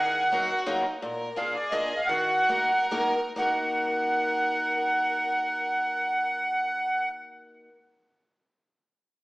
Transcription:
0.00 0.22 D#3 medium
0.00 0.30 G#4 medium
0.00 0.61 F#5 loud
0.31 0.49 F#3 medium
0.31 0.49 A#3 medium
0.31 0.49 D#4 medium
0.31 0.68 F#4 loud
0.31 0.50 F#4 soft
0.31 0.50 A#4 medium
0.66 0.84 F#3 medium
0.66 0.84 A#3 medium
0.66 0.84 D#4 medium
0.66 0.86 F4 medium
0.66 0.84 F#4 medium
0.66 0.85 A#4 medium
0.85 1.00 D#4 medium
1.01 1.29 A#2 medium
1.01 1.38 A#4 medium
1.36 1.55 A#3 medium
1.36 1.55 D4 soft
1.36 1.55 F4 medium
1.36 2.10 G#4 medium
1.36 1.55 G#4 medium
1.36 1.56 F5 medium
1.54 1.73 D5 medium
1.70 1.91 A#3 medium
1.70 1.91 D4 medium
1.70 1.91 F4 medium
1.70 1.91 G#4 medium
1.70 2.00 D#5 medium
1.97 2.09 F5 medium
2.06 2.39 D#3 medium
2.06 2.86 F#5 loud
2.11 2.51 F#4 medium
2.49 2.70 A#3 medium
2.49 2.70 D#4 medium
2.49 2.70 F#4 medium
2.49 3.37 A#4 loud
2.49 2.70 A#4 medium
2.91 3.14 A#3 medium
2.91 3.14 D#4 medium
2.91 3.14 F#4 medium
2.91 3.14 A#4 medium
3.36 7.67 A#3 medium
3.36 7.69 D#4 medium
3.36 7.70 F#4 medium
3.36 7.08 A#4 medium
3.36 7.71 A#4 medium
3.36 7.09 F#5 medium

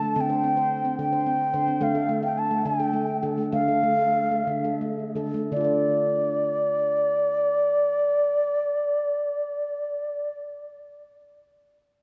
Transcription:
0.00 0.11 D3 medium
0.00 0.16 A3 medium
0.00 0.16 A5 loud
0.16 0.84 D3 medium
0.16 0.30 C4 medium
0.16 0.21 A5 loud
0.20 0.99 G5 loud
0.30 0.44 C5 medium
0.44 0.57 C4 medium
0.57 0.85 C5 medium
0.85 1.13 C4 medium
0.99 1.44 D3 medium
0.99 1.84 G5 loud
1.13 1.26 C5 medium
1.26 1.54 C4 medium
1.54 1.76 D3 medium
1.54 1.68 C5 medium
1.68 1.82 C4 medium
1.81 2.50 D3 medium
1.81 1.95 A3 medium
1.81 2.24 F5 loud
1.95 2.09 A4 medium
2.09 2.23 A3 medium
2.23 2.51 A4 medium
2.23 2.40 G5 medium
2.38 2.68 A5 medium
2.51 2.80 A3 medium
2.65 3.13 D3 medium
2.65 3.25 G5 medium
2.80 2.94 A4 medium
2.93 3.23 A3 medium
3.23 3.48 D3 medium
3.23 3.38 A4 medium
3.38 3.51 A3 medium
3.52 4.30 D3 medium
3.52 3.68 A3 medium
3.52 4.77 F5 loud
3.68 3.84 A4 medium
3.83 3.99 A3 medium
3.99 4.31 A4 medium
4.31 4.64 A3 medium
4.47 5.03 D3 medium
4.65 4.81 A4 medium
4.81 5.16 A3 medium
5.16 5.45 D3 medium
5.16 5.34 A4 medium
5.34 5.52 A3 medium
5.52 10.40 D3 medium
5.52 10.40 D4 medium
5.52 10.40 D5 medium
5.57 10.44 F4 medium
5.61 10.49 A4 medium
5.61 10.52 D5 medium

